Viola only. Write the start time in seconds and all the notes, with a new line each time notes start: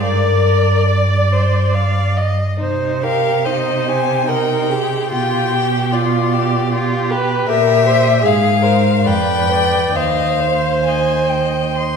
0.05 D5
2.61 C5
3.03 A#4
3.44 C5
4.28 A#4
4.69 G#4
5.13 G4
5.93 F4
6.72 G4
7.10 B4
7.49 G4
8.23 G#4
8.62 A#4
9.07 B4
9.52 D5
9.96 C5